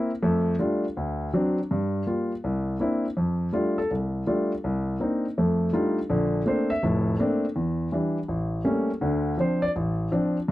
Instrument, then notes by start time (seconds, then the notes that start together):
grand piano
Already playing: E4
0.23 F2 A3
0.59 G3 A3 D4 F4
0.97 D2
1.33 F#3 C4 D4
1.71 G2
2.07 G3 A#3 F4
2.44 C2
2.80 A#3 C4 D4 E4
3.17 F2
3.53 G3 A3 D4 F4
3.78 A4
3.91 C2
4.27 G3 A3 D4 F4
4.64 C2
5.00 A#3 C4 D4 D#4
5.38 F2 A3
5.73 G3 A3 D4 D#4 F4
6.10 A#1 D3
6.46 A3 A#3 C4 D4 C5
6.70 E5
6.83 F1 A2
7.19 A3 A#3 C4 D4
7.56 E2
7.92 E3 G3 D4
8.28 A1
8.64 G3 A3 A#3 C#4
9.01 D2 D3
9.37 F3 C4 D4 C5
9.62 D5
9.76 A1
10.11 F3 C4 D4
10.48 G2